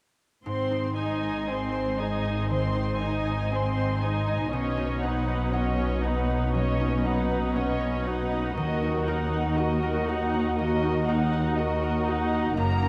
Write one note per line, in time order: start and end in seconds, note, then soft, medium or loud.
0.46 4.49 G#1 soft
0.46 4.49 G#2 soft
0.46 4.36 G#2 soft
0.46 0.94 C4 soft
0.46 0.93 C5 soft
0.46 0.94 C6 soft
0.71 2.24 D#4 soft
0.96 1.49 D#4 soft
0.96 1.73 C5 soft
0.96 1.49 D#5 soft
0.96 1.49 G#5 soft
1.23 3.25 D#5 soft
1.48 2.00 C4 soft
1.48 1.99 C5 soft
1.48 3.51 G#5 soft
1.48 2.00 C6 soft
1.74 3.00 C5 soft
2.00 2.51 D#4 soft
2.00 4.01 G#4 soft
2.00 2.51 D#5 soft
2.00 2.51 G#5 soft
2.25 2.74 D#4 soft
2.50 4.57 D#3 soft
2.50 2.98 C4 soft
2.50 2.98 C5 soft
2.50 2.98 C6 soft
2.76 4.26 D#4 soft
3.01 3.52 D#4 soft
3.01 3.76 C5 soft
3.01 3.52 D#5 soft
3.01 3.52 G#5 soft
3.26 5.27 D#5 soft
3.52 4.03 C4 soft
3.52 4.03 C5 soft
3.52 4.57 G#5 soft
3.52 4.02 C6 soft
3.77 4.57 C5 soft
4.02 4.53 D#4 soft
4.02 4.57 G#4 soft
4.02 4.53 D#5 soft
4.02 4.53 G#5 soft
4.27 4.76 D#4 soft
4.52 8.57 B1 soft
4.52 8.43 B2 soft
4.52 8.58 B2 soft
4.52 5.00 C#4 soft
4.52 5.00 C#5 soft
4.52 5.00 D#5 soft
4.77 6.29 D#4 soft
5.03 5.54 D#4 soft
5.03 5.54 B4 soft
5.03 5.78 C#5 soft
5.03 5.54 F#5 soft
5.29 7.30 D#5 soft
5.53 6.04 C#4 soft
5.53 6.05 C#5 soft
5.53 6.04 D#5 soft
5.53 7.55 F#5 soft
5.79 7.04 C#5 soft
6.05 6.55 D#4 soft
6.05 8.05 F#4 soft
6.05 6.56 B4 soft
6.05 6.55 F#5 soft
6.30 6.79 D#4 soft
6.54 10.45 F#3 soft
6.54 7.03 C#4 soft
6.54 7.02 C#5 soft
6.54 7.02 D#5 soft
6.81 8.31 D#4 soft
7.04 7.56 D#4 soft
7.04 7.57 B4 soft
7.04 7.79 C#5 soft
7.04 7.56 F#5 soft
7.31 9.32 D#5 soft
7.55 8.06 C#4 soft
7.55 8.06 C#5 soft
7.55 8.06 D#5 soft
7.55 9.57 F#5 soft
7.81 8.61 C#5 soft
8.06 8.57 D#4 soft
8.06 10.07 F#4 soft
8.06 8.58 B4 soft
8.06 8.57 F#5 soft
8.32 8.81 D#4 soft
8.56 12.57 D#2 soft
8.56 12.47 D#3 soft
8.56 9.04 F#4 soft
8.56 9.04 A#4 soft
8.56 9.04 D#5 soft
8.83 10.32 D#4 soft
9.06 9.57 D#4 soft
9.06 9.58 F#4 soft
9.06 9.82 A#4 soft
9.06 9.58 F#5 soft
9.33 11.32 D#5 soft
9.57 10.08 F#4 soft
9.57 10.08 A#4 soft
9.57 10.08 D#5 soft
9.57 11.57 F#5 soft
9.83 11.07 A#4 soft
10.08 10.58 D#4 soft
10.08 10.59 F#4 soft
10.08 12.06 F#4 soft
10.08 10.59 F#5 soft
10.34 10.82 D#4 soft
10.59 12.88 A#3 soft
10.59 11.05 F#4 soft
10.59 11.05 A#4 soft
10.59 11.05 D#5 soft
10.83 12.32 D#4 soft
11.08 11.58 D#4 soft
11.08 11.58 F#4 soft
11.08 11.82 A#4 soft
11.08 11.58 F#5 soft
11.33 12.61 D#5 soft
11.58 12.08 F#4 soft
11.58 12.08 A#4 soft
11.58 12.08 D#5 soft
11.58 12.88 F#5 soft
11.83 12.88 A#4 soft
12.07 12.57 D#4 soft
12.07 12.88 F#4 soft
12.07 12.57 F#4 soft
12.07 12.58 F#5 soft
12.33 12.62 D#4 soft
12.57 12.88 F#1 medium
12.57 12.88 F#2 soft
12.57 12.88 F#2 medium
12.57 12.88 A#3 medium
12.57 12.88 A#4 soft
12.57 12.88 A#5 soft
12.82 12.88 C#4 soft